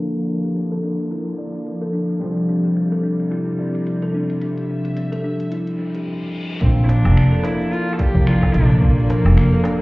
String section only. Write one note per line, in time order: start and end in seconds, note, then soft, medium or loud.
0.00 2.18 D3 medium
0.00 6.03 F3 medium
0.00 2.18 A#3 medium
2.21 6.03 C3 medium
2.21 6.03 G3 medium
4.42 6.05 E5 medium
6.61 9.82 F3 medium
6.61 9.82 A#3 medium
6.61 9.82 D5 medium